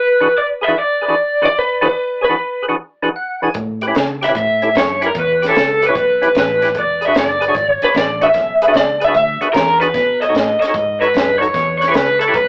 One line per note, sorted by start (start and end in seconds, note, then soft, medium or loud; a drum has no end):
0.00 0.32 B4 medium
0.20 0.28 E3 medium
0.20 0.28 D4 medium
0.20 0.28 F#4 medium
0.20 0.28 G#4 medium
0.20 0.28 B4 medium
0.38 0.45 D5 medium
0.61 0.65 G#4 medium
0.61 0.65 B4 medium
0.61 0.75 E5 medium
0.67 0.74 E3 medium
0.67 0.74 D4 medium
0.67 0.75 F#4 medium
0.67 0.75 G#4 medium
0.67 0.75 B4 medium
0.79 1.53 D5 medium
1.01 1.05 G#4 medium
1.01 1.05 B4 medium
1.08 1.15 E3 medium
1.08 1.15 D4 medium
1.08 1.15 F#4 medium
1.08 1.15 G#4 medium
1.08 1.15 B4 medium
1.42 1.48 E3 medium
1.42 1.48 D4 medium
1.42 1.49 F#4 medium
1.42 1.49 G#4 medium
1.42 1.49 B4 medium
1.42 1.56 D5 medium
1.59 1.83 B4 medium
1.81 1.88 E3 medium
1.81 1.88 D4 medium
1.81 1.88 F#4 medium
1.81 1.88 G#4 medium
1.81 1.89 B4 medium
1.85 2.23 B4 medium
2.21 2.25 G#4 medium
2.21 2.62 B4 medium
2.21 2.25 C#5 medium
2.29 2.35 E3 medium
2.29 2.35 D4 medium
2.29 2.35 F#4 medium
2.29 2.35 G#4 medium
2.29 2.36 B4 medium
2.62 2.65 G#4 medium
2.62 2.66 B4 medium
2.68 2.75 E3 medium
2.68 2.75 D4 medium
2.68 2.75 F#4 medium
2.68 2.75 G#4 medium
2.68 2.75 B4 medium
3.02 3.09 E3 medium
3.02 3.09 D4 medium
3.02 3.09 F#4 medium
3.02 3.09 G#4 medium
3.02 3.09 B4 medium
3.16 3.41 F#5 medium
3.42 3.49 E3 medium
3.42 3.49 D4 medium
3.42 3.49 F#4 medium
3.42 3.49 G#4 medium
3.42 3.49 B4 medium
3.42 3.55 G#5 medium
3.54 3.94 A2 medium
3.54 kick loud
3.54 closed hi-hat medium
3.81 3.85 G4 medium
3.81 3.86 B4 medium
3.81 closed hi-hat medium
3.87 3.94 C#4 medium
3.87 3.95 E4 medium
3.87 3.95 G4 medium
3.87 3.95 B4 medium
3.95 4.35 C#3 medium
3.95 snare medium
3.95 closed hi-hat medium
4.21 4.25 G4 medium
4.21 4.26 B4 medium
4.21 4.29 E5 medium
4.21 snare soft
4.21 closed hi-hat medium
4.28 4.35 C#4 medium
4.28 4.35 E4 medium
4.28 4.35 G4 medium
4.28 4.35 B4 medium
4.35 4.74 A2 medium
4.35 4.77 E5 medium
4.35 kick loud
4.35 closed hi-hat medium
4.62 4.69 C#4 medium
4.62 4.69 E4 medium
4.62 4.69 G4 medium
4.62 4.69 A4 medium
4.62 closed hi-hat medium
4.75 5.14 F#2 medium
4.75 5.04 C#5 medium
4.75 kick medium
4.75 snare loud
4.75 closed hi-hat medium
5.01 5.08 C#4 medium
5.01 5.09 E4 medium
5.01 5.09 G4 medium
5.01 5.09 B4 medium
5.01 closed hi-hat medium
5.06 5.17 A#4 medium
5.15 5.54 E2 medium
5.15 kick loud
5.15 closed hi-hat medium
5.19 5.42 B4 medium
5.42 5.45 G4 medium
5.42 5.46 B4 medium
5.42 snare soft
5.42 closed hi-hat medium
5.48 5.55 C#4 medium
5.48 5.55 E4 medium
5.48 5.55 G4 medium
5.48 5.86 A4 medium
5.48 5.55 C#5 medium
5.55 5.94 C#2 medium
5.55 snare loud
5.55 closed hi-hat medium
5.82 5.85 G4 medium
5.82 5.86 B4 medium
5.82 closed hi-hat medium
5.87 5.95 C#4 medium
5.87 5.95 E4 medium
5.87 5.95 G4 medium
5.87 6.37 B4 medium
5.87 5.96 C#5 medium
5.95 6.34 B1 medium
5.95 kick loud
5.95 closed hi-hat medium
6.22 6.28 C#4 medium
6.22 6.29 E4 medium
6.22 6.29 G4 medium
6.22 6.29 B4 medium
6.22 closed hi-hat medium
6.35 6.74 A1 medium
6.35 6.74 B4 medium
6.35 kick medium
6.35 snare medium
6.35 closed hi-hat medium
6.62 6.69 C#4 medium
6.62 6.69 E4 medium
6.62 6.69 G4 medium
6.62 6.69 B4 medium
6.62 snare soft
6.62 closed hi-hat medium
6.75 7.14 E1 medium
6.75 kick loud
6.75 closed hi-hat medium
6.79 7.05 D5 medium
7.01 7.05 G#4 medium
7.01 7.05 B4 medium
7.01 closed hi-hat medium
7.06 7.14 D4 medium
7.06 7.15 F#4 medium
7.06 7.15 G#4 soft
7.06 7.15 B4 medium
7.06 7.17 E5 medium
7.15 7.54 F#1 medium
7.15 snare loud
7.15 closed hi-hat medium
7.19 7.70 D5 medium
7.41 7.45 G#4 medium
7.41 7.45 B4 medium
7.41 closed hi-hat medium
7.48 7.55 D4 medium
7.48 7.55 F#4 medium
7.48 7.55 G#4 medium
7.48 7.55 C#5 medium
7.55 7.80 G#1 medium
7.55 kick loud
7.55 closed hi-hat medium
7.70 7.93 C#5 medium
7.82 7.89 D4 medium
7.82 7.89 F#4 medium
7.82 7.89 G#4 medium
7.82 7.96 B4 medium
7.82 7.89 D5 medium
7.82 muted fingered electric bass stroke soft
7.82 closed hi-hat medium
7.94 8.33 A1 medium
7.94 8.22 D5 medium
7.94 kick medium
7.94 snare medium
7.94 closed hi-hat medium
8.21 8.28 D4 medium
8.21 8.28 F#4 medium
8.21 8.28 G#4 medium
8.21 8.29 B4 medium
8.21 8.74 E5 medium
8.21 closed hi-hat medium
8.34 8.73 B1 medium
8.34 kick loud
8.34 snare soft
8.34 closed hi-hat medium
8.62 8.65 G#4 medium
8.62 8.65 B4 medium
8.62 closed hi-hat medium
8.67 8.74 D4 medium
8.67 8.75 F#4 medium
8.67 8.75 G#4 medium
8.67 8.75 B4 medium
8.74 9.13 C#2 medium
8.74 9.02 D5 medium
8.74 snare medium
8.74 closed hi-hat medium
9.00 9.04 G#4 medium
9.00 9.05 B4 medium
9.00 closed hi-hat medium
9.04 9.14 D4 medium
9.04 9.15 F#4 medium
9.04 9.15 G#4 medium
9.04 9.15 B4 medium
9.04 9.15 E5 medium
9.14 9.39 D2 medium
9.14 9.48 E5 medium
9.14 kick loud
9.14 closed hi-hat medium
9.41 9.48 D4 medium
9.41 9.48 F#4 medium
9.41 9.48 G#4 medium
9.41 9.48 B4 medium
9.41 muted fingered electric bass stroke soft
9.41 closed hi-hat medium
9.53 9.93 E2 medium
9.53 9.80 A#4 medium
9.53 kick medium
9.53 snare loud
9.53 closed hi-hat medium
9.80 9.88 D4 medium
9.80 9.88 F#4 medium
9.80 9.88 G#4 medium
9.80 10.21 B4 medium
9.80 9.89 B4 medium
9.80 closed hi-hat medium
9.94 10.33 B2 medium
9.94 kick loud
9.94 snare soft
9.94 closed hi-hat medium
10.22 10.25 A4 medium
10.22 10.25 C#5 medium
10.22 10.59 D#5 medium
10.22 closed hi-hat medium
10.29 10.35 D#4 medium
10.29 10.35 F#4 medium
10.29 10.35 A4 soft
10.29 10.35 C#5 medium
10.34 10.59 A2 medium
10.34 snare medium
10.34 closed hi-hat medium
10.60 10.64 A4 medium
10.60 10.65 C#5 medium
10.60 11.00 D#5 medium
10.60 muted fingered electric bass stroke soft
10.60 snare soft
10.60 closed hi-hat medium
10.68 10.74 D#4 medium
10.68 10.74 F#4 medium
10.68 10.75 A4 medium
10.68 10.75 C#5 medium
10.74 11.13 G#2 medium
10.74 kick loud
10.74 closed hi-hat medium
11.01 11.07 D#4 medium
11.01 11.08 F#4 medium
11.01 11.07 A4 medium
11.01 11.38 B4 medium
11.01 11.08 C#5 medium
11.01 closed hi-hat medium
11.14 11.53 F#2 medium
11.14 kick medium
11.14 snare loud
11.14 closed hi-hat medium
11.38 11.47 D#4 medium
11.38 11.47 F#4 medium
11.38 11.48 A4 medium
11.38 11.77 C#5 medium
11.38 11.48 C#5 medium
11.42 closed hi-hat medium
11.54 11.93 E2 medium
11.54 kick loud
11.54 snare soft
11.54 closed hi-hat medium
11.78 11.84 B4 medium
11.78 11.91 C#5 medium
11.78 closed hi-hat medium
11.82 11.85 C#5 medium
11.82 snare soft
11.87 11.94 E4 medium
11.87 11.94 G4 medium
11.87 11.94 B4 medium
11.87 11.94 C#5 medium
11.92 12.33 C#2 medium
11.92 12.18 B4 medium
11.92 snare loud
11.92 closed hi-hat medium
12.19 12.33 A4 medium
12.19 12.24 B4 medium
12.19 12.24 C#5 medium
12.19 closed hi-hat medium
12.27 12.34 E4 medium
12.27 12.34 G4 medium
12.27 12.34 B4 medium
12.27 12.34 C#5 medium
12.33 12.48 B1 medium
12.33 12.48 B4 medium
12.33 kick loud
12.33 closed hi-hat medium